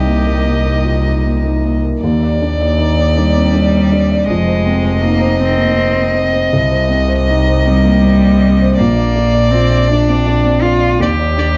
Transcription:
0.00 1.97 C2 medium
0.00 1.98 C2 medium
0.00 0.19 D#4 medium
0.00 1.42 G4 medium
0.00 1.81 D#5 medium
0.00 1.58 G5 medium
0.06 0.38 A#3 medium
0.27 0.58 A#4 medium
0.45 0.76 A#3 medium
0.66 0.97 D#4 soft
0.84 1.04 F4 soft
1.05 1.36 D#4 medium
1.25 1.56 A#3 medium
1.44 1.75 D#4 medium
1.64 1.94 A#3 medium
1.84 2.03 A#4 medium
2.00 4.30 D#2 medium
2.00 4.25 D#2 medium
2.00 4.23 D5 medium
2.23 2.52 D5 medium
2.42 2.71 D4 medium
2.61 2.90 D5 medium
2.79 3.08 D#4 medium
2.99 3.28 D5 medium
3.15 4.27 G3 loud
3.15 3.46 D4 medium
3.36 3.54 C4 medium
3.54 3.83 D4 medium
3.74 3.91 C4 medium
3.92 4.21 D4 medium
4.11 4.29 D5 medium
4.26 6.55 F1 medium
4.26 5.03 G#3 loud
4.26 8.73 D#5 medium
4.30 6.50 F2 medium
4.48 4.77 C5 medium
4.66 4.96 C4 medium
4.84 5.14 C5 medium
5.02 5.41 A#3 loud
5.02 5.33 D#4 medium
5.21 5.51 C5 medium
5.39 6.52 C4 loud
5.39 5.70 C4 medium
5.57 5.77 A#3 medium
5.76 6.07 C4 medium
5.95 6.15 A#3 medium
6.14 6.45 C4 medium
6.34 6.53 C5 medium
6.53 8.73 C2 medium
6.53 8.79 C2 medium
6.72 7.02 C5 medium
6.89 7.20 C4 medium
7.08 7.39 C5 medium
7.29 7.58 D#4 medium
7.48 7.77 C5 medium
7.65 8.79 G3 loud
7.65 7.95 C4 medium
7.84 8.03 A#3 medium
8.04 8.33 C4 medium
8.23 8.41 A#3 medium
8.42 8.71 C4 medium
8.62 8.79 C5 medium
8.76 11.02 A#1 medium
8.76 10.98 A#1 medium
8.76 9.53 A#3 loud
8.76 10.96 D5 medium
8.97 9.26 D5 medium
9.15 9.45 D4 medium
9.34 9.64 D5 medium
9.51 9.89 C4 loud
9.51 9.83 F4 medium
9.71 10.01 D5 medium
9.88 10.63 D4 loud
9.88 10.20 D4 medium
10.08 10.27 C4 medium
10.27 10.56 D4 medium
10.45 10.64 C4 medium
10.62 10.94 D4 medium
10.62 11.02 F4 loud
10.80 11.00 D5 medium
10.99 11.57 D#2 medium
10.99 11.57 G4 loud
10.99 11.10 D5 medium
11.19 11.49 D5 medium
11.38 11.57 D4 medium
11.38 11.47 D5 medium

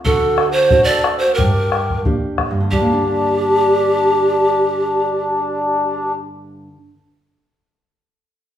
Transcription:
0.04 0.69 D3 medium
0.04 0.51 F#4 medium
0.04 0.51 A4 loud
0.04 bombo low medium
0.38 bombo rim medium
0.52 0.84 F#4 medium
0.52 0.86 C5 medium
0.71 1.25 A3 medium
0.71 1.25 D4 soft
0.71 1.25 F#4 medium
0.71 bombo low medium
0.84 1.20 A4 medium
0.84 1.20 D5 loud
1.04 bombo rim medium
1.19 1.37 F#4 medium
1.19 1.36 C5 medium
1.34 2.03 G4 medium
1.34 2.03 A#4 medium
1.38 2.03 G2 medium
1.38 bombo low medium
1.72 bombo rim medium
1.90 bombo low medium
2.05 2.58 A#3 medium
2.05 2.58 D4 soft
2.05 2.59 G4 medium
2.05 bombo low medium
2.38 bombo rim medium
2.38 bombo low soft
2.51 6.67 G2 medium
2.60 6.76 D3 medium
2.71 2.81 G3 medium
2.71 6.12 D4 medium
2.71 6.12 G4 loud
2.71 bombo low medium
2.81 6.87 A#3 medium
2.92 6.93 D4 medium

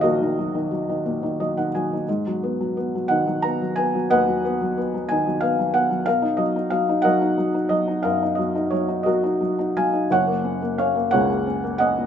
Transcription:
0.00 2.09 D#2 medium
0.00 1.02 A#2 medium
0.00 0.21 D#3 soft
0.00 0.39 F#3 medium
0.00 0.03 F#4 medium
0.00 1.68 F#4 soft
0.00 0.03 A#4 medium
0.00 1.68 A#4 soft
0.00 2.08 C#5 medium
0.00 1.40 D#5 medium
0.00 2.09 F5 medium
0.04 2.03 A#1 medium
0.21 0.53 D#3 soft
0.39 0.70 F#3 soft
0.55 0.88 D#3 soft
0.71 1.38 F#3 soft
0.89 1.21 D#3 soft
1.05 2.04 A#2 medium
1.23 1.56 D#3 soft
1.40 1.73 F#3 soft
1.40 1.55 D#5 soft
1.57 1.92 D#3 soft
1.57 1.73 F#5 soft
1.75 2.07 F#3 soft
1.75 2.06 G#5 soft
1.93 2.08 D#3 soft
2.09 4.07 G#2 soft
2.27 2.59 F#3 soft
2.43 2.75 B3 soft
2.61 2.94 F#3 soft
2.77 3.42 B3 soft
2.95 3.26 F#3 soft
3.08 5.06 D#3 medium
3.08 3.43 F#5 medium
3.27 3.60 F#3 soft
3.42 3.76 B3 soft
3.42 3.74 A#5 medium
3.61 3.93 F#3 soft
3.76 4.43 B3 soft
3.76 4.11 G#5 medium
3.95 4.27 F#3 soft
4.10 6.03 D#2 medium
4.10 5.05 B4 medium
4.10 5.05 D#5 medium
4.10 5.12 F#5 medium
4.28 4.60 F#3 soft
4.45 4.76 B3 soft
4.61 4.93 F#3 soft
4.78 5.41 B3 soft
4.94 5.25 F#3 soft
5.09 6.05 D#3 medium
5.09 5.42 G#5 medium
5.27 5.58 F#3 soft
5.41 5.73 B3 soft
5.41 5.74 F5 medium
5.59 5.89 F#3 soft
5.74 6.06 B3 soft
5.74 6.07 F#5 medium
5.91 6.06 F#3 soft
6.06 8.00 B2 medium
6.06 7.01 A#4 medium
6.06 6.40 F5 medium
6.22 6.54 D#4 soft
6.37 6.70 F#3 soft
6.37 6.68 D#5 medium
6.56 6.88 D#4 soft
6.70 7.04 F#3 soft
6.70 7.05 F5 medium
6.89 7.20 D#4 soft
7.02 7.36 F#3 medium
7.02 8.00 A#4 medium
7.02 7.68 D#5 medium
7.02 7.71 F#5 medium
7.21 7.53 D#4 soft
7.38 7.69 F#3 soft
7.54 7.86 D#4 soft
7.69 8.37 F#3 soft
7.69 8.04 D#5 medium
7.88 8.21 D#4 soft
8.03 10.07 F#2 medium
8.03 9.03 A#4 medium
8.03 8.38 F5 medium
8.22 8.54 D#4 soft
8.35 8.71 F#3 soft
8.35 8.72 D#5 medium
8.55 8.87 D#4 soft
8.70 9.05 F#3 soft
8.70 9.07 C#5 medium
8.88 9.22 D#4 soft
9.03 9.40 F#3 medium
9.03 10.06 F#4 soft
9.03 10.06 A#4 soft
9.03 9.79 D#5 medium
9.23 9.57 D#4 soft
9.41 9.75 F#3 soft
9.59 9.92 D#4 soft
9.77 10.10 F#3 soft
9.77 10.08 F5 medium
9.77 10.09 G#5 medium
9.93 10.10 D#4 soft
10.11 12.06 F#1 medium
10.11 12.06 F#2 medium
10.11 10.75 C#5 medium
10.11 10.81 F#5 medium
10.27 10.61 A#3 soft
10.44 10.77 C#4 soft
10.62 10.94 A#3 soft
10.78 11.45 C#4 soft
10.78 11.10 C#5 medium
10.78 11.13 F5 medium
10.95 11.29 A#3 soft
11.11 12.06 C#2 medium
11.11 12.06 C#3 medium
11.11 11.75 C#5 medium
11.11 11.75 F#5 medium
11.30 11.62 A#3 soft
11.47 11.78 C#4 soft
11.64 12.06 A#3 soft
11.78 12.06 C#4 soft
11.78 12.06 D#5 medium
11.78 12.06 F#5 medium
11.98 12.06 A#2 soft

